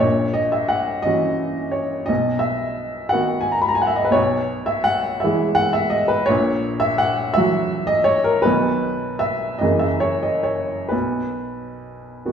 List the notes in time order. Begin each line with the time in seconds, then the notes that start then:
0.00 A#1 A#2 C#5
0.34 D#5
0.52 E5
0.68 F#5
1.02 E3 C#4 F#4 D#5
1.71 C#5
2.06 B1 B2 D#5
2.39 E5
3.09 D#3 B3 F#4 F#5
3.41 G#5
3.52 A#5
3.62 B5
3.69 A#5
3.75 G#5
3.82 F#5
3.87 E5
3.96 D#5
4.05 B4
4.11 B2 C#5
4.15 B1
4.66 E5
4.84 F#5
5.20 E3 G#3 E5
5.25 E4
5.55 F#5
5.73 E5
5.90 D#5
6.08 B4
6.26 A#1 A#2 C#5
6.80 E5
6.98 F#5
7.34 E3 F#3 E5
7.38 F#4
7.87 D#5
8.04 C#5
8.24 A#4
8.42 B1 B2 D#3 F#3 B4
8.46 F#4
9.19 E5
9.59 F#1 F#2 E3 A#3 D#5
9.63 G#4
9.79 E5
10.00 C#5
10.23 D#5
10.43 C#5
10.89 B1 B2 B4
12.25 D#3 B3 F#4